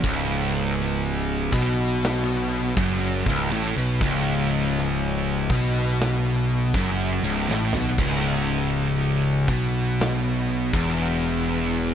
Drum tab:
CC |----------------|----------------|x---------------|
HH |o---o---o---o---|o---o---o---o---|----o---o---o---|
SD |---o----o-------|---o----o-----o-|--------o-------|
FT |----------------|---------------o|----------------|
BD |o-----o----o-o--|o-----o----o----|o-----o----o----|